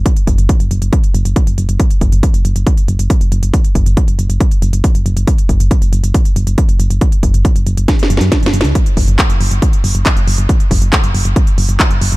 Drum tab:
HH |x--x--x--x--x--x--x--x--x--x--x--x--x--x--x--x--|x--x--x--x--x--x--x--x--x--x--x--x--x--x--x--x--|x--x--x--x--x--x--x--x--x--x--x--x--x--x--x--x--|x--x--x--x--x--x--x--x--x--x--x--x--x--x--x--x--|
CP |------------------------------------------------|------------------------------------------------|------------------------------------------------|------------------------------------------------|
SD |------------------------------------------------|------------------------------------------------|------------------------------------------------|------------------------------------------------|
BD |o-----o-----o-----------o-----------o-----------|o-----o-----o-----------o-----------o-----------|o-----o-----o-----------o-----------o-----------|o-----o-----o-----------o-----------o-----------|

HH |x--x--x--x--x--x--x--x--x--x--x--x--x--x--x--x--|x--x--o--x--x--x--o--x--x--x--o--x--x--x--o--x--|x--x--o--x--x--x--o--x--x--x--o--x--x--x--o--x--|
CP |------------------------------------------------|------------x-----------------------x-----------|------------x-----------------------x-----------|
SD |------------------------o---o---o---o---o---o---|------------------------------------------------|------------------------------------------------|
BD |o-----o-----o-----------o-----------o-----------|o-----o-----o-----------o-----------o-----------|o-----o-----o-----------o-----------o-----------|